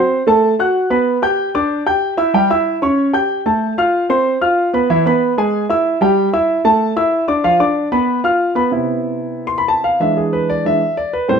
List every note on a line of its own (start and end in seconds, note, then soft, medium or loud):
0.00 0.21 C4 medium
0.00 0.21 C5 medium
0.00 0.21 C6 medium
0.27 0.53 A3 medium
0.27 0.53 A4 medium
0.27 0.53 A5 medium
0.59 0.85 F#4 medium
0.59 0.85 F#5 medium
0.59 0.86 F#6 medium
0.90 1.17 B3 medium
0.90 1.17 B4 medium
0.90 1.17 B5 medium
1.22 1.48 G4 medium
1.22 1.49 G5 medium
1.22 1.49 G6 medium
1.55 1.81 D4 medium
1.55 1.81 D5 medium
1.55 1.81 D6 medium
1.86 2.12 G4 medium
1.86 2.13 G5 medium
1.86 2.13 G6 medium
2.17 2.31 E4 medium
2.17 2.31 E5 medium
2.17 2.31 E6 medium
2.34 2.47 G3 medium
2.34 2.47 G4 medium
2.34 2.47 G5 medium
2.50 2.76 E4 medium
2.50 2.76 E5 medium
2.50 2.77 E6 medium
2.82 3.08 C#4 medium
2.82 3.08 C#5 medium
2.82 3.09 C#6 medium
3.13 3.40 G4 medium
3.13 3.40 G5 medium
3.13 3.40 G6 medium
3.46 3.72 A3 medium
3.46 3.72 A4 medium
3.46 3.72 A5 medium
3.78 4.04 F4 medium
3.78 4.04 F5 medium
3.78 4.04 F6 medium
4.09 4.36 C4 medium
4.09 4.36 C5 medium
4.09 4.36 C6 medium
4.41 4.68 F4 medium
4.41 4.68 F5 medium
4.41 4.68 F6 medium
4.73 4.87 B3 medium
4.73 4.87 B4 medium
4.73 4.87 B5 medium
4.90 5.03 E3 medium
4.90 5.03 E4 medium
4.90 5.03 E5 medium
5.06 5.32 B3 medium
5.06 5.32 B4 medium
5.06 5.33 B5 medium
5.38 5.64 G#3 medium
5.38 5.64 G#4 medium
5.38 5.64 G#5 medium
5.69 5.96 E4 medium
5.69 5.96 E5 medium
5.69 5.96 E6 medium
6.01 6.27 G3 medium
6.01 6.28 G4 medium
6.01 6.28 G5 medium
6.33 6.59 E4 medium
6.33 6.60 E5 medium
6.33 6.60 E6 medium
6.65 6.91 A3 medium
6.65 6.91 A4 medium
6.65 6.91 A5 medium
6.96 7.23 E4 medium
6.96 7.23 E5 medium
6.96 7.23 E6 medium
7.28 7.41 D4 medium
7.28 7.42 D5 medium
7.28 7.42 D6 medium
7.44 7.57 F3 medium
7.44 7.58 F4 medium
7.44 7.58 F5 medium
7.60 7.87 D4 medium
7.60 7.87 D5 medium
7.60 7.87 D6 medium
7.92 8.19 B3 medium
7.92 8.19 B4 medium
7.92 8.19 B5 medium
8.24 8.51 F4 medium
8.24 8.51 F5 medium
8.24 8.51 F6 medium
8.55 8.69 B3 medium
8.55 8.69 B4 medium
8.55 8.69 B5 medium
8.71 9.96 C3 medium
8.71 9.96 B3 soft
8.71 9.96 E4 medium
9.47 9.58 C6 medium
9.58 9.68 B5 medium
9.68 9.84 A5 medium
9.84 10.00 F5 medium
10.00 10.64 E3 medium
10.00 10.65 G#3 medium
10.00 10.65 D4 medium
10.00 10.16 E5 medium
10.17 10.32 G#4 medium
10.33 10.48 B4 medium
10.50 10.65 D5 medium
10.65 10.79 E3 medium
10.65 10.80 G#3 soft
10.65 10.80 D4 medium
10.65 10.95 E5 medium
10.97 11.13 D5 medium
11.13 11.29 B4 medium
11.28 11.40 A2 medium
11.28 11.40 G3 soft
11.28 11.40 C4 medium
11.28 11.40 C5 medium